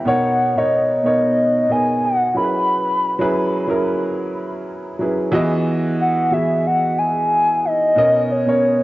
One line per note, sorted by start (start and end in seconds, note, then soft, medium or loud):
0.00 0.22 E5 soft
0.00 0.22 G5 medium
0.05 0.49 B2 medium
0.05 0.49 B3 medium
0.05 0.50 D#4 medium
0.05 0.50 A#4 medium
0.05 0.50 C#5 loud
0.05 0.59 F#5 loud
0.55 0.98 B2 medium
0.55 0.98 B3 medium
0.55 0.99 D#4 medium
0.55 0.99 A#4 medium
0.55 0.99 C#5 medium
0.55 1.04 D#5 medium
1.03 1.62 B2 medium
1.03 1.62 B3 medium
1.03 1.63 D#4 medium
1.03 1.63 A#4 medium
1.03 1.63 C#5 medium
1.03 1.73 D#5 medium
1.69 2.35 B2 medium
1.69 2.35 B3 medium
1.69 2.36 D#4 medium
1.69 2.36 A#4 medium
1.69 2.36 D#5 medium
1.69 2.07 G#5 medium
2.05 2.36 F#5 loud
2.34 3.08 F#3 medium
2.34 3.08 C#4 medium
2.34 3.09 E4 medium
2.34 3.09 G#4 medium
2.34 2.43 A#4 medium
2.34 3.64 B5 loud
2.44 3.12 B4 medium
3.19 3.61 F#3 medium
3.19 3.62 C#4 medium
3.19 3.62 E4 medium
3.19 3.62 G#4 medium
3.19 3.63 B4 loud
3.67 4.85 F#3 medium
3.67 4.85 C#4 medium
3.67 4.85 E4 medium
3.67 4.85 G#4 medium
3.67 4.86 A#4 medium
4.99 5.28 F#3 medium
4.99 5.29 C#4 medium
4.99 5.29 E4 medium
4.99 5.29 G#4 medium
4.99 5.30 B4 medium
5.32 6.20 E3 loud
5.32 6.20 B3 medium
5.32 6.20 F#4 loud
5.32 5.40 G4 medium
5.32 6.21 D#5 loud
5.40 6.24 G#4 medium
6.01 6.34 F#5 loud
6.31 7.48 E3 medium
6.31 7.48 B3 medium
6.31 7.49 F#4 medium
6.31 7.49 G#4 medium
6.31 6.68 E5 loud
6.31 7.49 E5 medium
6.66 7.00 F#5 loud
6.98 7.66 G#5 loud
7.65 8.33 D#5 loud
7.96 8.40 B2 medium
7.96 8.40 B3 medium
7.96 8.41 C#4 medium
7.96 8.41 A#4 medium
7.96 8.41 D#5 loud
8.31 8.83 C#5 loud
8.46 8.83 B2 medium
8.46 8.83 B3 medium
8.46 8.83 C#4 medium
8.46 8.83 A#4 medium
8.46 8.83 C#5 medium